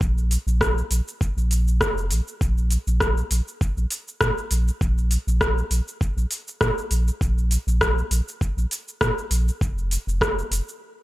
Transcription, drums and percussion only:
0.01 kick, cabasa
0.18 cabasa
0.31 open hi-hat, cabasa
0.48 cabasa
0.61 kick, cross-stick, cabasa
0.78 cabasa
0.91 open hi-hat, cabasa
1.08 cabasa
1.21 kick, cabasa
1.38 cabasa
1.51 open hi-hat, cabasa
1.68 cabasa
1.81 kick, cross-stick, cabasa
1.98 cabasa
2.11 open hi-hat, cabasa
2.28 cabasa
2.41 kick, cabasa
2.58 cabasa
2.71 open hi-hat, cabasa
2.88 cabasa
3.00 kick, cross-stick, cabasa
3.18 cabasa
3.31 open hi-hat, cabasa
3.48 cabasa
3.61 kick, cabasa
3.78 cabasa
3.90 open hi-hat, cabasa
4.08 cabasa
4.21 kick, cross-stick, cabasa
4.38 cabasa
4.51 open hi-hat, cabasa
4.68 cabasa
4.81 kick, cabasa
4.98 cabasa
5.11 open hi-hat, cabasa
5.28 cabasa
5.41 kick, cross-stick, cabasa
5.58 cabasa
5.71 open hi-hat, cabasa
5.88 cabasa
6.01 kick, cabasa
6.18 cabasa
6.31 open hi-hat, cabasa
6.48 cabasa
6.61 kick, cross-stick, cabasa
6.78 cabasa
6.91 open hi-hat, cabasa
7.08 cabasa
7.21 kick, cabasa
7.38 cabasa
7.51 open hi-hat, cabasa
7.68 cabasa
7.81 kick, cross-stick, cabasa
7.98 cabasa
8.11 open hi-hat, cabasa
8.28 cabasa
8.41 kick, cabasa
8.58 cabasa
8.71 open hi-hat, cabasa
8.88 cabasa
9.01 kick, cross-stick, cabasa
9.18 cabasa
9.31 open hi-hat, cabasa
9.48 cabasa
9.61 kick, cabasa
9.78 cabasa
9.91 open hi-hat, cabasa
10.09 cabasa
10.21 kick, cross-stick, cabasa
10.39 cabasa
10.52 open hi-hat, cabasa
10.69 cabasa

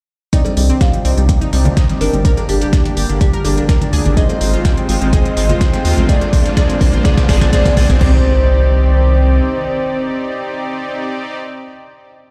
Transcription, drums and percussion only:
0.33 kick, closed hi-hat, tambourine
0.45 closed hi-hat, cowbell
0.57 open hi-hat, tambourine
0.69 closed hi-hat
0.81 kick, snare, closed hi-hat, tambourine
0.93 closed hi-hat
1.05 open hi-hat, tambourine
1.18 closed hi-hat
1.29 kick, closed hi-hat, tambourine
1.41 closed hi-hat
1.53 snare, open hi-hat, tambourine
1.65 closed hi-hat, high conga
1.77 kick, snare, closed hi-hat, tambourine
1.89 snare, closed hi-hat
2.01 snare, open hi-hat, tambourine
2.13 closed hi-hat, high conga
2.25 kick, closed hi-hat, tambourine
2.37 closed hi-hat, cowbell
2.49 open hi-hat, tambourine
2.61 closed hi-hat
2.73 kick, snare, closed hi-hat, tambourine
2.85 closed hi-hat
2.97 open hi-hat, tambourine
3.09 closed hi-hat
3.21 kick, closed hi-hat, tambourine, high conga
3.33 closed hi-hat
3.45 open hi-hat, tambourine, cowbell
3.57 closed hi-hat
3.69 kick, snare, closed hi-hat, tambourine
3.81 closed hi-hat, high conga
3.93 open hi-hat, tambourine
4.05 closed hi-hat, high conga
4.17 kick, closed hi-hat, tambourine
4.29 closed hi-hat, cowbell
4.41 open hi-hat, tambourine
4.54 closed hi-hat
4.65 kick, snare, closed hi-hat, tambourine
4.77 closed hi-hat
4.89 open hi-hat, tambourine
5.01 closed hi-hat
5.13 kick, closed hi-hat, tambourine
5.25 closed hi-hat
5.37 snare, open hi-hat, tambourine
5.49 closed hi-hat, high conga
5.61 kick, snare, closed hi-hat, tambourine
5.73 snare, closed hi-hat
5.85 snare, open hi-hat, tambourine
5.97 high conga
6.09 kick, closed hi-hat, tambourine
6.21 closed hi-hat, cowbell
6.33 kick, open hi-hat, tambourine
6.45 closed hi-hat
6.57 kick, snare, closed hi-hat, tambourine
6.70 closed hi-hat
6.81 kick, open hi-hat, tambourine
6.93 closed hi-hat
7.05 kick, snare, closed hi-hat, tambourine, high conga
7.17 kick, snare, closed hi-hat, tambourine
7.28 kick, snare, open hi-hat, tambourine, cowbell
7.41 kick, snare, closed hi-hat, tambourine
7.53 kick, closed hi-hat, tambourine
7.66 kick, closed hi-hat, tambourine, high conga
7.77 kick, open hi-hat
7.90 kick, closed hi-hat, tambourine, high conga
8.01 kick, crash

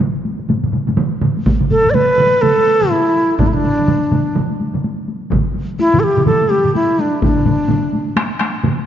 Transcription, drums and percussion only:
0.00 taiko low-mid, taiko mid, taiko high
0.25 taiko high
0.39 taiko high
0.49 taiko low-mid, taiko mid, taiko high
0.63 taiko low-mid, taiko mid
0.73 taiko low-mid, taiko mid, taiko high
0.87 taiko low-mid, taiko mid, taiko high
0.97 taiko low-mid, taiko mid, taiko high
1.21 taiko low-mid, taiko mid, taiko high
1.37 taiko high
1.46 taiko, taiko low-mid, taiko mid, taiko high
1.61 taiko low-mid, taiko mid, taiko high
1.71 taiko low-mid, taiko mid, taiko high
1.84 taiko low-mid, taiko mid
1.94 taiko low-mid, taiko mid, taiko high
2.09 taiko high
2.18 taiko low-mid, taiko mid, taiko high
2.33 taiko high
2.43 taiko low-mid, taiko mid, taiko high
2.57 taiko high
2.67 taiko high
2.81 taiko low-mid, taiko mid, taiko high
2.92 taiko high
3.06 taiko high
3.16 taiko high
3.30 taiko high
3.39 taiko, taiko low-mid, taiko mid, taiko high
3.54 taiko low-mid, taiko mid
3.64 taiko low-mid, taiko mid, taiko high
3.78 taiko low-mid, taiko mid, taiko high
3.88 taiko low-mid, taiko mid, taiko high
4.11 taiko low-mid, taiko mid, taiko high
4.27 taiko high
4.35 taiko low-mid, taiko mid, taiko high
4.50 taiko high
4.60 taiko high
4.74 taiko low-mid, taiko mid, taiko high
4.84 taiko high
4.98 taiko high
5.08 taiko high
5.22 taiko high
5.31 taiko, taiko low-mid, taiko mid, taiko high
5.46 taiko high
5.55 taiko high
5.70 taiko high
5.79 taiko high
5.94 taiko low-mid, taiko mid, taiko high
6.17 taiko low-mid, taiko mid, taiko high
6.26 taiko low-mid, taiko mid, taiko high
6.42 taiko high
6.51 taiko high
6.64 taiko low-mid, taiko mid, taiko high
6.75 taiko high
6.90 taiko high
6.99 taiko high
7.13 taiko high
7.22 taiko, taiko low-mid, taiko mid, taiko high
7.36 taiko low-mid, taiko mid
7.45 taiko low-mid, taiko mid, taiko high
7.59 taiko high
7.69 taiko low-mid, taiko mid, taiko high
7.83 taiko high
7.93 taiko high
8.07 taiko high
8.16 taiko rim, taiko high
8.40 taiko rim, taiko high
8.55 taiko high
8.63 taiko low-mid, taiko mid, taiko high
8.79 taiko high

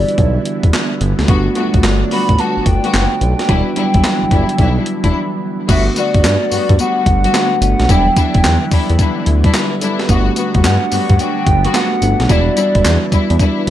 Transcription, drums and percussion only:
0.08 closed hi-hat
0.18 kick, closed hi-hat
0.45 closed hi-hat
0.63 kick, closed hi-hat
0.73 snare, clap, closed hi-hat
1.01 closed hi-hat
1.19 snare, closed hi-hat
1.28 kick, closed hi-hat
1.55 closed hi-hat
1.74 kick, closed hi-hat
1.83 snare, clap, closed hi-hat
2.11 open hi-hat
2.29 kick, closed hi-hat
2.39 closed hi-hat
2.66 kick, closed hi-hat
2.84 closed hi-hat
2.94 snare, clap, closed hi-hat
3.21 closed hi-hat
3.39 snare, closed hi-hat
3.49 kick, closed hi-hat
3.76 closed hi-hat
3.94 kick, closed hi-hat
4.04 snare, clap, closed hi-hat
4.31 kick, closed hi-hat
4.49 closed hi-hat
4.58 kick, closed hi-hat
4.86 closed hi-hat
5.04 kick, closed hi-hat
5.69 kick, closed hi-hat, crash, tambourine
5.96 closed hi-hat, tambourine
6.14 kick, closed hi-hat
6.24 snare, clap, closed hi-hat, tambourine
6.51 open hi-hat, tambourine
6.69 kick, closed hi-hat
6.79 closed hi-hat, tambourine
7.06 kick, closed hi-hat
7.24 closed hi-hat
7.34 snare, clap, closed hi-hat, tambourine
7.62 closed hi-hat, tambourine
7.80 snare, closed hi-hat
7.89 kick, closed hi-hat, tambourine
8.16 kick, closed hi-hat, tambourine
8.34 kick, closed hi-hat
8.44 snare, clap, closed hi-hat, tambourine
8.71 kick, open hi-hat, tambourine
8.89 closed hi-hat
8.99 kick, closed hi-hat, tambourine
9.26 closed hi-hat
9.44 kick, closed hi-hat
9.54 snare, clap, closed hi-hat, tambourine
9.81 closed hi-hat, tambourine
9.99 snare, closed hi-hat
10.09 kick, closed hi-hat, tambourine
10.36 closed hi-hat, tambourine
10.54 kick, closed hi-hat
10.64 snare, clap, closed hi-hat, tambourine
10.92 open hi-hat, tambourine
11.09 kick, closed hi-hat
11.19 closed hi-hat, tambourine
11.47 kick, closed hi-hat
11.65 closed hi-hat
11.74 snare, clap, closed hi-hat, tambourine
12.02 closed hi-hat, tambourine
12.20 snare, closed hi-hat
12.29 kick, closed hi-hat, tambourine
12.57 closed hi-hat, tambourine
12.75 kick, closed hi-hat
12.85 snare, clap, closed hi-hat, tambourine
13.12 kick, closed hi-hat, tambourine
13.30 closed hi-hat
13.40 kick, closed hi-hat, tambourine

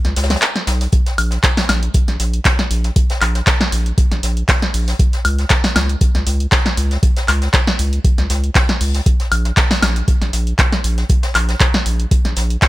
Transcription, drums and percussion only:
0.05 snare, closed hi-hat
0.16 snare, closed hi-hat, open hi-hat
0.23 snare, closed hi-hat
0.30 snare, closed hi-hat
0.36 snare, closed hi-hat
0.42 snare, clap, closed hi-hat
0.56 snare, closed hi-hat
0.67 snare, closed hi-hat, open hi-hat
0.81 snare, open hi-hat
0.92 kick, closed hi-hat
1.06 snare, closed hi-hat
1.18 closed hi-hat, open hi-hat, high woodblock
1.31 snare, closed hi-hat
1.43 kick, snare, clap, closed hi-hat
1.57 snare, open hi-hat
1.69 snare, closed hi-hat, open hi-hat, high woodblock
1.83 closed hi-hat
1.94 kick, closed hi-hat
2.08 snare, closed hi-hat
2.20 snare, closed hi-hat, open hi-hat
2.33 closed hi-hat
2.45 kick, snare, clap, closed hi-hat
2.59 snare, closed hi-hat
2.71 closed hi-hat, open hi-hat
2.84 snare, closed hi-hat
2.96 kick, closed hi-hat
3.10 snare, closed hi-hat
3.21 clap, closed hi-hat, open hi-hat, high woodblock
3.35 snare, closed hi-hat
3.47 kick, snare, clap, closed hi-hat
3.61 snare, closed hi-hat
3.72 closed hi-hat, open hi-hat
3.86 closed hi-hat
3.98 kick, closed hi-hat
4.12 snare, closed hi-hat
4.23 snare, closed hi-hat, open hi-hat
4.37 closed hi-hat
4.48 kick, snare, clap, closed hi-hat
4.62 snare, closed hi-hat
4.74 open hi-hat
4.88 snare, open hi-hat
4.99 kick, closed hi-hat
5.13 snare, closed hi-hat
5.25 closed hi-hat, open hi-hat, high woodblock
5.39 snare, closed hi-hat
5.49 kick, snare, clap, closed hi-hat
5.64 snare, open hi-hat
5.76 snare, closed hi-hat, open hi-hat, high woodblock
5.89 closed hi-hat
6.01 kick, closed hi-hat
6.15 snare, closed hi-hat
6.26 snare, closed hi-hat, open hi-hat
6.40 closed hi-hat
6.51 kick, snare, clap, closed hi-hat
6.65 snare, closed hi-hat
6.77 closed hi-hat, open hi-hat
6.91 snare, closed hi-hat
7.03 kick, closed hi-hat
7.17 snare, closed hi-hat
7.28 clap, closed hi-hat, open hi-hat, high woodblock
7.42 snare, closed hi-hat
7.53 kick, snare, clap, closed hi-hat
7.67 snare, closed hi-hat
7.79 closed hi-hat, open hi-hat
7.93 closed hi-hat
8.04 kick, closed hi-hat
8.18 snare, closed hi-hat
8.30 snare, closed hi-hat, open hi-hat
8.44 closed hi-hat
8.55 kick, snare, clap, closed hi-hat
8.69 snare, closed hi-hat
8.81 open hi-hat
8.95 snare, open hi-hat
9.06 kick, closed hi-hat
9.20 snare, closed hi-hat
9.32 closed hi-hat, open hi-hat, high woodblock
9.45 snare, closed hi-hat
9.57 kick, snare, clap, closed hi-hat
9.71 snare, open hi-hat
9.82 snare, closed hi-hat, open hi-hat, high woodblock
9.96 closed hi-hat
10.08 kick, closed hi-hat
10.22 snare, closed hi-hat
10.33 snare, closed hi-hat, open hi-hat
10.47 closed hi-hat
10.58 kick, snare, clap, closed hi-hat
10.72 snare, closed hi-hat
10.84 closed hi-hat, open hi-hat
10.98 snare, closed hi-hat
11.09 kick, closed hi-hat
11.23 snare, closed hi-hat
11.35 clap, closed hi-hat, open hi-hat, high woodblock
11.49 snare, closed hi-hat
11.60 kick, snare, clap, closed hi-hat
11.74 snare, closed hi-hat
11.86 closed hi-hat, open hi-hat
12.00 closed hi-hat
12.11 kick, closed hi-hat
12.25 snare, closed hi-hat
12.36 snare, closed hi-hat, open hi-hat
12.50 closed hi-hat
12.62 kick, snare, clap, closed hi-hat

